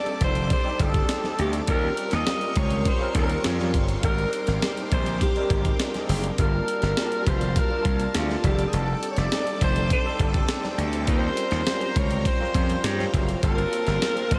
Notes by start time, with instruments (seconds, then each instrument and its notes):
Already playing: tine electric piano G3 C4 D4 D#4 A4, string machine G4 D5 A5 D6, alto saxophone D5
0.06 closed hi-hat, muted conga
0.21 slap bass F1, alto saxophone C5, kick, closed hi-hat, high conga, low conga
0.35 closed hi-hat, low conga
0.50 alto saxophone C5, kick, closed hi-hat, muted conga, high conga
0.64 tine electric piano G3 C4 D4 D#4 G4, muted conga
0.79 slap bass G1, alto saxophone A4, kick, closed hi-hat, high conga
0.94 kick, closed hi-hat
1.09 snare, closed hi-hat, muted conga
1.23 tine electric piano G3 C4 D4 D#4 A4, snare, high conga
1.39 slap bass D2, alto saxophone G4, closed hi-hat, low conga
1.53 closed hi-hat
1.67 slap bass D#2, tine electric piano G3 C4 C#4 F4 A#4, alto saxophone A#4, string machine F5 C6 C#6, kick, closed hi-hat, muted conga
1.83 muted conga
1.97 closed hi-hat
2.11 slap bass D#2, alto saxophone D#5, snare, closed hi-hat
2.27 tine electric piano G3 C4 C#4 F4 A#4, snare, closed hi-hat, muted conga, high conga
2.41 closed hi-hat
2.56 slap bass C#2, alto saxophone C#5, kick, closed hi-hat, high conga, low conga
2.70 closed hi-hat, low conga
2.85 alto saxophone C5, kick, closed hi-hat, muted conga, high conga
3.00 tine electric piano G3 C4 C#4 F4 A#4
3.15 slap bass D#2, alto saxophone A#4, kick, closed hi-hat, high conga
3.29 closed hi-hat
3.44 slap bass F2, snare, closed hi-hat
3.59 tine electric piano G3 C4 C#4 F4 A#4, snare, muted conga, high conga
3.74 slap bass G1, kick, closed hi-hat, low conga
3.88 closed hi-hat
4.03 slap bass G#1, tine electric piano G3 C4 D4 D#4 A4, string machine A#4 G5 D6, alto saxophone A#4, kick, closed hi-hat
4.11 tine electric piano A#4
4.18 closed hi-hat
4.33 closed hi-hat
4.47 slap bass G#1, snare, closed hi-hat
4.62 tine electric piano G3 C4 D4 D#4 G4, snare, closed hi-hat, muted conga, high conga
4.77 closed hi-hat, muted conga
4.91 slap bass A#1, alto saxophone C5, kick, closed hi-hat, high conga, low conga
5.06 closed hi-hat, low conga
5.21 alto saxophone G4, kick, closed hi-hat, muted conga, high conga
5.35 tine electric piano G3 C4 D4 D#4 A#4, closed hi-hat, muted conga
5.50 slap bass G#1, kick, closed hi-hat, high conga
5.65 kick, closed hi-hat
5.80 snare, closed hi-hat, muted conga
5.94 tine electric piano C4 D4 D#4 G4 G#4, snare, closed hi-hat, muted conga, high conga
6.09 slap bass F#1, open hi-hat, low conga
6.24 closed hi-hat
6.38 slap bass G1, tine electric piano G3 A#3 D4 F4 A5, string machine A#4 F5 A5, alto saxophone A#4, kick, closed hi-hat
6.68 closed hi-hat
6.82 slap bass G1, snare, closed hi-hat
6.97 tine electric piano G3 A#3 D4 F4 F#4, snare, closed hi-hat, muted conga, high conga
7.05 tine electric piano G4
7.12 closed hi-hat
7.27 slap bass F1, alto saxophone C5, kick, closed hi-hat, high conga, low conga
7.41 closed hi-hat, low conga
7.56 alto saxophone A#4, kick, closed hi-hat, muted conga, high conga
7.70 tine electric piano G3 A#3 D4 F4 A5, muted conga
7.85 slap bass C2, kick, closed hi-hat, high conga
8.00 closed hi-hat
8.14 slap bass D2, alto saxophone F4, snare, closed hi-hat, muted conga
8.29 tine electric piano G3 A#3 D4 F4 A4, snare, muted conga, high conga
8.43 slap bass F1, tine electric piano G3 C4 D4 D#4 G#4, alto saxophone G4, string machine D5 G5 D6, kick, closed hi-hat, low conga
8.51 tine electric piano A4
8.59 closed hi-hat
8.68 alto saxophone G#4
8.72 slap bass F1, alto saxophone A4, closed hi-hat, muted conga
8.88 muted conga
9.03 closed hi-hat
9.11 alto saxophone C#5
9.16 slap bass F1, alto saxophone D5, snare, closed hi-hat
9.31 tine electric piano G3 C4 D4 D#4 A4, snare, closed hi-hat, high conga
9.47 closed hi-hat
9.61 slap bass F1, alto saxophone C5, kick, closed hi-hat, high conga, low conga
9.76 closed hi-hat, low conga
9.90 alto saxophone C5, kick, closed hi-hat, high conga
10.04 tine electric piano G3 C4 D4 D#4 A4
10.19 slap bass G1, alto saxophone A4, kick, closed hi-hat, high conga
10.34 kick, closed hi-hat
10.49 snare, closed hi-hat, muted conga
10.63 tine electric piano G3 C4 D4 D#4 B4, snare, high conga
10.70 tine electric piano C5
10.78 slap bass D2, closed hi-hat, low conga
10.93 closed hi-hat
11.07 slap bass D#2, tine electric piano G3 C4 C#4 F4 A#4, string machine A#4 F5 A#5, alto saxophone C5, kick, closed hi-hat
11.23 muted conga
11.37 closed hi-hat
11.51 slap bass D#2, snare, closed hi-hat
11.66 tine electric piano F#3 C4 C#4 F4 C5, snare, closed hi-hat, muted conga, high conga
11.73 tine electric piano G3
11.81 closed hi-hat, muted conga
11.96 slap bass C#2, alto saxophone C#5, kick, closed hi-hat, high conga, low conga
12.11 closed hi-hat, low conga
12.25 alto saxophone C5, kick, closed hi-hat, muted conga, high conga
12.39 tine electric piano F3 C4 C#4 F4 C5
12.46 tine electric piano G3
12.54 slap bass F2, kick, closed hi-hat, high conga
12.70 closed hi-hat
12.84 slap bass G2, alto saxophone G4, snare, closed hi-hat
12.98 tine electric piano G3 C4 C#4 F4 B4, snare, muted conga, high conga
13.06 tine electric piano C5
13.14 slap bass F#1, kick, closed hi-hat, low conga
13.29 closed hi-hat
13.43 slap bass G1, tine electric piano A3 C4 D4 F4 A5, string machine A#3 A5 C6, alto saxophone A#4, kick, closed hi-hat
13.49 tine electric piano A#3
13.58 closed hi-hat, muted conga
13.73 closed hi-hat
13.87 slap bass G1, snare, closed hi-hat
14.01 tine electric piano A#3 C4 D4 F4 C5, snare, closed hi-hat, muted conga, high conga
14.16 closed hi-hat, muted conga
14.31 slap bass A1, alto saxophone C5, kick, closed hi-hat, high conga, low conga